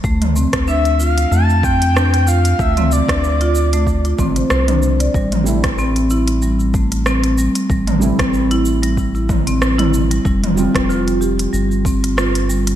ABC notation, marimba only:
X:1
M:4/4
L:1/16
Q:"Swing 16ths" 1/4=94
K:Am
V:1 name="Marimba"
A,2 C z D z F z A,2 C z D z F z | A, C2 D2 F2 A, z F C c c D z d | G,2 A, z C z E z G,2 A, z C z G, z | G, A,2 C2 E2 G, z E2 C2 E z G, |
G,2 C z F z G z G,2 C z F z G, z |]